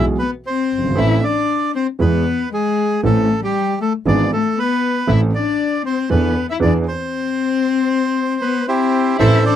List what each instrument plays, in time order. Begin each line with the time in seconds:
Already playing: grand piano B1 B2 E3 G#3 B3 G#4, double bass B1
0.19 cello B3, bandoneon B4
0.47 cello C4, bandoneon C5
0.72 double bass G1
0.78 grand piano F#1
0.84 grand piano G1
0.90 grand piano G#1
0.95 grand piano A1 A2 E3 A3 C4 A4, double bass A1, cello E4, bandoneon E5
1.23 cello D4, bandoneon D5
1.75 cello C4, bandoneon C5
1.99 grand piano E2 E3 G#3 B3 G#4, double bass E2, cello B3, bandoneon B4
2.53 cello G#3, bandoneon G#4
3.03 grand piano A1 A2 E3 A3 C4 A4, double bass A1, cello A3, bandoneon A4
3.42 cello G3, bandoneon G4
3.80 cello A3, bandoneon A4
4.05 grand piano G#1 G#2 E3 G#3 B3 G#4, double bass G#1, cello D4, bandoneon D5
4.33 cello A3, bandoneon A4
4.59 cello B3, bandoneon B4
5.07 grand piano A1 A2 E3 A3 C4 A4, double bass A1, cello E4, bandoneon E5
5.34 cello D4, bandoneon D5
5.85 cello C4, bandoneon C5
6.10 grand piano E2 E3 B3 D4 A4, double bass E2, cello B3, bandoneon B4
6.50 cello E4, bandoneon E5
6.60 grand piano E2 E3 B3 D4 G#4, double bass E2, bandoneon D5
6.66 cello D4
6.88 cello C4, bandoneon C5
8.42 cello B3, bandoneon B4
8.68 cello C4, bandoneon E4 G4 C5
9.19 grand piano A1 A2 E3 A3 C4 A4, double bass A1, string section A3 C4 E4, cello E4, bandoneon A4 C5 E5
9.46 cello D4, bandoneon A4 D5